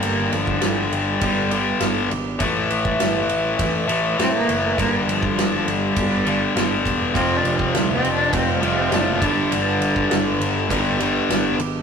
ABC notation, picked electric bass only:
X:1
M:4/4
L:1/8
Q:1/4=101
K:Amix
V:1 name="Picked electric bass" clef=bass
G,,, G,,, G,,, G,,, G,,,2 G,,, _A,,, | A,,, A,,, G,,, A,,, A,,, A,,, A,, F,,, | G,,, G,,, G,,, G,,, G,,,2 G,,, E,,, | =F,,, F,,, D,, F,,, F,,, F,,, ^F,,, G,,, |
G,,, G,,, G,,, G,,, G,,,2 G,,, _A,,, |]